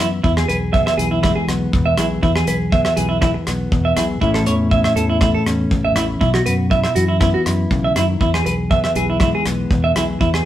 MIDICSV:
0, 0, Header, 1, 6, 480
1, 0, Start_track
1, 0, Key_signature, 4, "major"
1, 0, Tempo, 498339
1, 229, Time_signature, 4, 2, 24, 8
1, 10067, End_track
2, 0, Start_track
2, 0, Title_t, "Clean electric guitar"
2, 0, Program_c, 0, 27
2, 227, Note_on_c, 0, 64, 73
2, 304, Note_off_c, 0, 64, 0
2, 357, Note_on_c, 0, 68, 64
2, 427, Note_off_c, 0, 68, 0
2, 467, Note_on_c, 0, 71, 74
2, 544, Note_off_c, 0, 71, 0
2, 702, Note_on_c, 0, 76, 75
2, 781, Note_off_c, 0, 76, 0
2, 831, Note_on_c, 0, 76, 60
2, 901, Note_off_c, 0, 76, 0
2, 939, Note_on_c, 0, 68, 70
2, 1018, Note_off_c, 0, 68, 0
2, 1071, Note_on_c, 0, 64, 58
2, 1142, Note_off_c, 0, 64, 0
2, 1184, Note_on_c, 0, 64, 76
2, 1261, Note_off_c, 0, 64, 0
2, 1305, Note_on_c, 0, 68, 59
2, 1377, Note_off_c, 0, 68, 0
2, 1787, Note_on_c, 0, 76, 68
2, 1858, Note_off_c, 0, 76, 0
2, 1903, Note_on_c, 0, 64, 67
2, 1980, Note_off_c, 0, 64, 0
2, 2145, Note_on_c, 0, 64, 71
2, 2221, Note_off_c, 0, 64, 0
2, 2274, Note_on_c, 0, 68, 61
2, 2342, Note_off_c, 0, 68, 0
2, 2386, Note_on_c, 0, 71, 72
2, 2462, Note_off_c, 0, 71, 0
2, 2623, Note_on_c, 0, 76, 70
2, 2699, Note_off_c, 0, 76, 0
2, 2746, Note_on_c, 0, 76, 60
2, 2817, Note_off_c, 0, 76, 0
2, 2856, Note_on_c, 0, 68, 66
2, 2934, Note_off_c, 0, 68, 0
2, 2974, Note_on_c, 0, 64, 63
2, 3048, Note_off_c, 0, 64, 0
2, 3095, Note_on_c, 0, 64, 79
2, 3174, Note_off_c, 0, 64, 0
2, 3708, Note_on_c, 0, 76, 63
2, 3778, Note_off_c, 0, 76, 0
2, 3818, Note_on_c, 0, 64, 68
2, 3895, Note_off_c, 0, 64, 0
2, 4058, Note_on_c, 0, 64, 80
2, 4135, Note_off_c, 0, 64, 0
2, 4180, Note_on_c, 0, 69, 62
2, 4252, Note_off_c, 0, 69, 0
2, 4302, Note_on_c, 0, 73, 65
2, 4378, Note_off_c, 0, 73, 0
2, 4541, Note_on_c, 0, 76, 74
2, 4617, Note_off_c, 0, 76, 0
2, 4667, Note_on_c, 0, 76, 61
2, 4737, Note_off_c, 0, 76, 0
2, 4777, Note_on_c, 0, 69, 73
2, 4855, Note_off_c, 0, 69, 0
2, 4908, Note_on_c, 0, 64, 65
2, 4977, Note_off_c, 0, 64, 0
2, 5021, Note_on_c, 0, 64, 74
2, 5097, Note_off_c, 0, 64, 0
2, 5148, Note_on_c, 0, 69, 61
2, 5218, Note_off_c, 0, 69, 0
2, 5630, Note_on_c, 0, 76, 61
2, 5699, Note_off_c, 0, 76, 0
2, 5740, Note_on_c, 0, 64, 67
2, 5817, Note_off_c, 0, 64, 0
2, 5979, Note_on_c, 0, 64, 77
2, 6056, Note_off_c, 0, 64, 0
2, 6104, Note_on_c, 0, 66, 60
2, 6175, Note_off_c, 0, 66, 0
2, 6220, Note_on_c, 0, 71, 72
2, 6297, Note_off_c, 0, 71, 0
2, 6464, Note_on_c, 0, 76, 76
2, 6540, Note_off_c, 0, 76, 0
2, 6590, Note_on_c, 0, 76, 61
2, 6659, Note_off_c, 0, 76, 0
2, 6699, Note_on_c, 0, 66, 72
2, 6776, Note_off_c, 0, 66, 0
2, 6824, Note_on_c, 0, 64, 61
2, 6895, Note_off_c, 0, 64, 0
2, 6940, Note_on_c, 0, 64, 78
2, 7017, Note_off_c, 0, 64, 0
2, 7070, Note_on_c, 0, 66, 64
2, 7139, Note_off_c, 0, 66, 0
2, 7556, Note_on_c, 0, 76, 65
2, 7624, Note_off_c, 0, 76, 0
2, 7675, Note_on_c, 0, 64, 71
2, 7748, Note_off_c, 0, 64, 0
2, 7909, Note_on_c, 0, 64, 79
2, 7984, Note_off_c, 0, 64, 0
2, 8034, Note_on_c, 0, 68, 62
2, 8103, Note_off_c, 0, 68, 0
2, 8147, Note_on_c, 0, 71, 68
2, 8223, Note_off_c, 0, 71, 0
2, 8386, Note_on_c, 0, 76, 76
2, 8462, Note_off_c, 0, 76, 0
2, 8513, Note_on_c, 0, 76, 59
2, 8582, Note_off_c, 0, 76, 0
2, 8633, Note_on_c, 0, 68, 68
2, 8707, Note_off_c, 0, 68, 0
2, 8762, Note_on_c, 0, 64, 58
2, 8829, Note_off_c, 0, 64, 0
2, 8872, Note_on_c, 0, 64, 75
2, 8947, Note_off_c, 0, 64, 0
2, 9003, Note_on_c, 0, 68, 65
2, 9070, Note_off_c, 0, 68, 0
2, 9477, Note_on_c, 0, 76, 65
2, 9546, Note_off_c, 0, 76, 0
2, 9594, Note_on_c, 0, 64, 71
2, 9669, Note_off_c, 0, 64, 0
2, 9831, Note_on_c, 0, 64, 76
2, 9907, Note_off_c, 0, 64, 0
2, 9961, Note_on_c, 0, 68, 63
2, 10030, Note_off_c, 0, 68, 0
2, 10067, End_track
3, 0, Start_track
3, 0, Title_t, "Clean electric guitar"
3, 0, Program_c, 1, 27
3, 0, Note_on_c, 1, 42, 57
3, 0, Note_on_c, 1, 52, 54
3, 0, Note_on_c, 1, 59, 53
3, 204, Note_off_c, 1, 42, 0
3, 204, Note_off_c, 1, 52, 0
3, 204, Note_off_c, 1, 59, 0
3, 231, Note_on_c, 1, 40, 62
3, 480, Note_on_c, 1, 68, 54
3, 714, Note_on_c, 1, 59, 51
3, 948, Note_on_c, 1, 52, 59
3, 1189, Note_on_c, 1, 56, 58
3, 1416, Note_off_c, 1, 59, 0
3, 1428, Note_on_c, 1, 59, 51
3, 1660, Note_on_c, 1, 47, 58
3, 1901, Note_off_c, 1, 68, 0
3, 1913, Note_on_c, 1, 68, 52
3, 2113, Note_off_c, 1, 47, 0
3, 2117, Note_off_c, 1, 56, 0
3, 2120, Note_off_c, 1, 68, 0
3, 2138, Note_off_c, 1, 40, 0
3, 2150, Note_on_c, 1, 40, 66
3, 2385, Note_on_c, 1, 68, 54
3, 2619, Note_off_c, 1, 59, 0
3, 2631, Note_on_c, 1, 59, 52
3, 2860, Note_off_c, 1, 52, 0
3, 2864, Note_on_c, 1, 52, 54
3, 3345, Note_off_c, 1, 59, 0
3, 3359, Note_on_c, 1, 59, 50
3, 3584, Note_on_c, 1, 47, 60
3, 3816, Note_off_c, 1, 68, 0
3, 3828, Note_on_c, 1, 68, 54
3, 4034, Note_off_c, 1, 47, 0
3, 4036, Note_off_c, 1, 68, 0
3, 4053, Note_on_c, 1, 45, 64
3, 4060, Note_off_c, 1, 52, 0
3, 4063, Note_off_c, 1, 40, 0
3, 4063, Note_on_c, 1, 52, 57
3, 4067, Note_on_c, 1, 57, 55
3, 4069, Note_off_c, 1, 59, 0
3, 4074, Note_on_c, 1, 61, 55
3, 4085, Note_on_c, 1, 64, 63
3, 4317, Note_off_c, 1, 64, 0
3, 4321, Note_on_c, 1, 64, 55
3, 4535, Note_off_c, 1, 61, 0
3, 4547, Note_on_c, 1, 61, 53
3, 4787, Note_off_c, 1, 52, 0
3, 4791, Note_on_c, 1, 52, 51
3, 5023, Note_off_c, 1, 57, 0
3, 5032, Note_on_c, 1, 57, 59
3, 5258, Note_off_c, 1, 61, 0
3, 5270, Note_on_c, 1, 61, 49
3, 5497, Note_on_c, 1, 40, 53
3, 5744, Note_off_c, 1, 64, 0
3, 5748, Note_on_c, 1, 64, 56
3, 5957, Note_off_c, 1, 61, 0
3, 5958, Note_off_c, 1, 57, 0
3, 5976, Note_off_c, 1, 45, 0
3, 5978, Note_off_c, 1, 40, 0
3, 5981, Note_on_c, 1, 47, 62
3, 6221, Note_off_c, 1, 64, 0
3, 6225, Note_on_c, 1, 66, 55
3, 6254, Note_off_c, 1, 52, 0
3, 6460, Note_off_c, 1, 66, 0
3, 6464, Note_on_c, 1, 64, 60
3, 6701, Note_off_c, 1, 47, 0
3, 6702, Note_on_c, 1, 52, 51
3, 6945, Note_on_c, 1, 59, 57
3, 7182, Note_off_c, 1, 64, 0
3, 7186, Note_on_c, 1, 64, 59
3, 7428, Note_on_c, 1, 49, 56
3, 7665, Note_off_c, 1, 49, 0
3, 7666, Note_off_c, 1, 52, 0
3, 7669, Note_on_c, 1, 51, 56
3, 7906, Note_off_c, 1, 51, 0
3, 7914, Note_on_c, 1, 40, 61
3, 8153, Note_off_c, 1, 64, 0
3, 8157, Note_on_c, 1, 68, 52
3, 8394, Note_off_c, 1, 59, 0
3, 8394, Note_on_c, 1, 59, 51
3, 8626, Note_on_c, 1, 52, 53
3, 8876, Note_on_c, 1, 56, 57
3, 9107, Note_off_c, 1, 59, 0
3, 9118, Note_on_c, 1, 59, 51
3, 9347, Note_on_c, 1, 47, 53
3, 9586, Note_off_c, 1, 68, 0
3, 9597, Note_on_c, 1, 68, 53
3, 9800, Note_off_c, 1, 47, 0
3, 9805, Note_off_c, 1, 56, 0
3, 9805, Note_off_c, 1, 68, 0
3, 9815, Note_off_c, 1, 40, 0
3, 9826, Note_on_c, 1, 40, 65
3, 10067, Note_off_c, 1, 40, 0
3, 10067, Note_off_c, 1, 52, 0
3, 10067, Note_off_c, 1, 59, 0
3, 10067, End_track
4, 0, Start_track
4, 0, Title_t, "Fingered electric bass"
4, 0, Program_c, 2, 33
4, 231, Note_on_c, 2, 40, 89
4, 412, Note_off_c, 2, 40, 0
4, 472, Note_on_c, 2, 35, 76
4, 834, Note_off_c, 2, 35, 0
4, 942, Note_on_c, 2, 35, 78
4, 1307, Note_off_c, 2, 35, 0
4, 1421, Note_on_c, 2, 35, 71
4, 1605, Note_off_c, 2, 35, 0
4, 1672, Note_on_c, 2, 40, 85
4, 1851, Note_off_c, 2, 40, 0
4, 1910, Note_on_c, 2, 35, 76
4, 2090, Note_off_c, 2, 35, 0
4, 2147, Note_on_c, 2, 40, 99
4, 2327, Note_off_c, 2, 40, 0
4, 2383, Note_on_c, 2, 35, 72
4, 2747, Note_off_c, 2, 35, 0
4, 2860, Note_on_c, 2, 35, 86
4, 3225, Note_off_c, 2, 35, 0
4, 3341, Note_on_c, 2, 35, 77
4, 3523, Note_off_c, 2, 35, 0
4, 3582, Note_on_c, 2, 40, 81
4, 3763, Note_off_c, 2, 40, 0
4, 3811, Note_on_c, 2, 35, 69
4, 3997, Note_off_c, 2, 35, 0
4, 4061, Note_on_c, 2, 33, 100
4, 4243, Note_off_c, 2, 33, 0
4, 4302, Note_on_c, 2, 40, 79
4, 4666, Note_off_c, 2, 40, 0
4, 4772, Note_on_c, 2, 40, 92
4, 5139, Note_off_c, 2, 40, 0
4, 5258, Note_on_c, 2, 40, 71
4, 5441, Note_off_c, 2, 40, 0
4, 5502, Note_on_c, 2, 33, 81
4, 5683, Note_off_c, 2, 33, 0
4, 5736, Note_on_c, 2, 33, 72
4, 5920, Note_off_c, 2, 33, 0
4, 5985, Note_on_c, 2, 35, 97
4, 6165, Note_off_c, 2, 35, 0
4, 6227, Note_on_c, 2, 42, 78
4, 6590, Note_off_c, 2, 42, 0
4, 6700, Note_on_c, 2, 42, 84
4, 7065, Note_off_c, 2, 42, 0
4, 7187, Note_on_c, 2, 42, 71
4, 7367, Note_off_c, 2, 42, 0
4, 7427, Note_on_c, 2, 35, 81
4, 7608, Note_off_c, 2, 35, 0
4, 7663, Note_on_c, 2, 42, 72
4, 7845, Note_off_c, 2, 42, 0
4, 7906, Note_on_c, 2, 40, 87
4, 8087, Note_off_c, 2, 40, 0
4, 8147, Note_on_c, 2, 35, 73
4, 8512, Note_off_c, 2, 35, 0
4, 8624, Note_on_c, 2, 35, 84
4, 8990, Note_off_c, 2, 35, 0
4, 9107, Note_on_c, 2, 35, 77
4, 9289, Note_off_c, 2, 35, 0
4, 9348, Note_on_c, 2, 40, 81
4, 9531, Note_off_c, 2, 40, 0
4, 9590, Note_on_c, 2, 35, 73
4, 9772, Note_off_c, 2, 35, 0
4, 9834, Note_on_c, 2, 40, 98
4, 10015, Note_off_c, 2, 40, 0
4, 10067, End_track
5, 0, Start_track
5, 0, Title_t, "Muted clean electric guitar strokes"
5, 3114, Note_on_c, 9, 29, 57
5, 3210, Note_off_c, 9, 29, 0
5, 3220, Note_on_c, 9, 29, 64
5, 3316, Note_off_c, 9, 29, 0
5, 10067, End_track
6, 0, Start_track
6, 0, Title_t, "Drums"
6, 233, Note_on_c, 9, 36, 73
6, 329, Note_off_c, 9, 36, 0
6, 357, Note_on_c, 9, 37, 60
6, 453, Note_off_c, 9, 37, 0
6, 476, Note_on_c, 9, 42, 41
6, 572, Note_off_c, 9, 42, 0
6, 713, Note_on_c, 9, 36, 78
6, 810, Note_off_c, 9, 36, 0
6, 837, Note_on_c, 9, 37, 57
6, 934, Note_off_c, 9, 37, 0
6, 956, Note_on_c, 9, 42, 45
6, 1052, Note_off_c, 9, 42, 0
6, 1189, Note_on_c, 9, 37, 62
6, 1191, Note_on_c, 9, 36, 83
6, 1285, Note_off_c, 9, 37, 0
6, 1288, Note_off_c, 9, 36, 0
6, 1431, Note_on_c, 9, 37, 58
6, 1431, Note_on_c, 9, 42, 40
6, 1527, Note_off_c, 9, 37, 0
6, 1527, Note_off_c, 9, 42, 0
6, 1670, Note_on_c, 9, 36, 83
6, 1766, Note_off_c, 9, 36, 0
6, 1903, Note_on_c, 9, 37, 69
6, 1903, Note_on_c, 9, 42, 49
6, 1999, Note_off_c, 9, 37, 0
6, 1999, Note_off_c, 9, 42, 0
6, 2148, Note_on_c, 9, 36, 71
6, 2244, Note_off_c, 9, 36, 0
6, 2269, Note_on_c, 9, 37, 64
6, 2365, Note_off_c, 9, 37, 0
6, 2382, Note_on_c, 9, 42, 46
6, 2478, Note_off_c, 9, 42, 0
6, 2624, Note_on_c, 9, 36, 81
6, 2720, Note_off_c, 9, 36, 0
6, 2743, Note_on_c, 9, 37, 59
6, 2840, Note_off_c, 9, 37, 0
6, 2861, Note_on_c, 9, 42, 44
6, 2957, Note_off_c, 9, 42, 0
6, 3099, Note_on_c, 9, 37, 62
6, 3103, Note_on_c, 9, 36, 82
6, 3196, Note_off_c, 9, 37, 0
6, 3199, Note_off_c, 9, 36, 0
6, 3341, Note_on_c, 9, 37, 59
6, 3341, Note_on_c, 9, 42, 42
6, 3437, Note_off_c, 9, 37, 0
6, 3437, Note_off_c, 9, 42, 0
6, 3583, Note_on_c, 9, 36, 81
6, 3679, Note_off_c, 9, 36, 0
6, 3820, Note_on_c, 9, 37, 64
6, 3820, Note_on_c, 9, 42, 48
6, 3916, Note_off_c, 9, 37, 0
6, 3916, Note_off_c, 9, 42, 0
6, 4061, Note_on_c, 9, 36, 70
6, 4157, Note_off_c, 9, 36, 0
6, 4184, Note_on_c, 9, 37, 60
6, 4280, Note_off_c, 9, 37, 0
6, 4299, Note_on_c, 9, 42, 44
6, 4396, Note_off_c, 9, 42, 0
6, 4540, Note_on_c, 9, 36, 79
6, 4636, Note_off_c, 9, 36, 0
6, 4665, Note_on_c, 9, 37, 60
6, 4761, Note_off_c, 9, 37, 0
6, 4784, Note_on_c, 9, 42, 42
6, 4880, Note_off_c, 9, 42, 0
6, 5017, Note_on_c, 9, 37, 67
6, 5021, Note_on_c, 9, 36, 89
6, 5114, Note_off_c, 9, 37, 0
6, 5117, Note_off_c, 9, 36, 0
6, 5264, Note_on_c, 9, 37, 57
6, 5264, Note_on_c, 9, 42, 41
6, 5360, Note_off_c, 9, 37, 0
6, 5360, Note_off_c, 9, 42, 0
6, 5502, Note_on_c, 9, 36, 79
6, 5598, Note_off_c, 9, 36, 0
6, 5739, Note_on_c, 9, 37, 68
6, 5739, Note_on_c, 9, 42, 52
6, 5835, Note_off_c, 9, 37, 0
6, 5835, Note_off_c, 9, 42, 0
6, 5983, Note_on_c, 9, 36, 77
6, 6079, Note_off_c, 9, 36, 0
6, 6105, Note_on_c, 9, 37, 61
6, 6201, Note_off_c, 9, 37, 0
6, 6226, Note_on_c, 9, 42, 48
6, 6322, Note_off_c, 9, 42, 0
6, 6464, Note_on_c, 9, 36, 76
6, 6560, Note_off_c, 9, 36, 0
6, 6584, Note_on_c, 9, 37, 55
6, 6681, Note_off_c, 9, 37, 0
6, 6703, Note_on_c, 9, 42, 46
6, 6799, Note_off_c, 9, 42, 0
6, 6942, Note_on_c, 9, 37, 61
6, 6944, Note_on_c, 9, 36, 84
6, 7038, Note_off_c, 9, 37, 0
6, 7040, Note_off_c, 9, 36, 0
6, 7186, Note_on_c, 9, 37, 58
6, 7186, Note_on_c, 9, 42, 46
6, 7282, Note_off_c, 9, 37, 0
6, 7282, Note_off_c, 9, 42, 0
6, 7425, Note_on_c, 9, 36, 78
6, 7521, Note_off_c, 9, 36, 0
6, 7667, Note_on_c, 9, 37, 61
6, 7667, Note_on_c, 9, 42, 52
6, 7763, Note_off_c, 9, 37, 0
6, 7763, Note_off_c, 9, 42, 0
6, 7905, Note_on_c, 9, 36, 74
6, 8002, Note_off_c, 9, 36, 0
6, 8034, Note_on_c, 9, 37, 65
6, 8131, Note_off_c, 9, 37, 0
6, 8152, Note_on_c, 9, 42, 44
6, 8248, Note_off_c, 9, 42, 0
6, 8388, Note_on_c, 9, 36, 78
6, 8484, Note_off_c, 9, 36, 0
6, 8513, Note_on_c, 9, 37, 54
6, 8609, Note_off_c, 9, 37, 0
6, 8626, Note_on_c, 9, 42, 41
6, 8722, Note_off_c, 9, 42, 0
6, 8860, Note_on_c, 9, 37, 64
6, 8866, Note_on_c, 9, 36, 83
6, 8957, Note_off_c, 9, 37, 0
6, 8962, Note_off_c, 9, 36, 0
6, 9108, Note_on_c, 9, 37, 56
6, 9108, Note_on_c, 9, 42, 41
6, 9204, Note_off_c, 9, 37, 0
6, 9204, Note_off_c, 9, 42, 0
6, 9349, Note_on_c, 9, 36, 82
6, 9445, Note_off_c, 9, 36, 0
6, 9592, Note_on_c, 9, 37, 65
6, 9592, Note_on_c, 9, 42, 46
6, 9689, Note_off_c, 9, 37, 0
6, 9689, Note_off_c, 9, 42, 0
6, 9833, Note_on_c, 9, 36, 71
6, 9929, Note_off_c, 9, 36, 0
6, 9958, Note_on_c, 9, 37, 62
6, 10054, Note_off_c, 9, 37, 0
6, 10067, End_track
0, 0, End_of_file